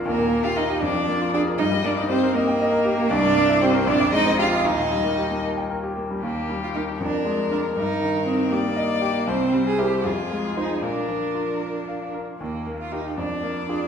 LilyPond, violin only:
\new Staff \with { instrumentName = "Violin" } { \time 6/8 \key ees \major \tempo 4. = 78 bes'8. f''16 ees''8 d''4 d''8 | ees''8 d''8 c''8 bes'4. | d''4 c''8 d''8 ees''8 f''8 | ees''4. r4. |
g'4. bes'4. | bes'4. d''4. | c''4. aes'4. | bes'2~ bes'16 r8. |
r4. d''4. | }